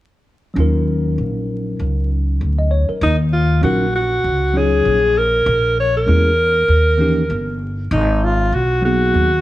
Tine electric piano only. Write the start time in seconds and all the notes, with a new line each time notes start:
0.54 F#3 C#4 D#4
0.59 F4 A#4
2.58 D#5
2.71 C#5
2.89 A#4
3.61 F#3 C#4 D#4 F4 A#4
4.54 F#3 C#4 D#4 F4 C#5
6.06 G#3 A#3 C#4 E4 G#4
6.98 E3 A#3 C#4 D#4 G4
8.82 F#3 A#3 B3 D#4 G#4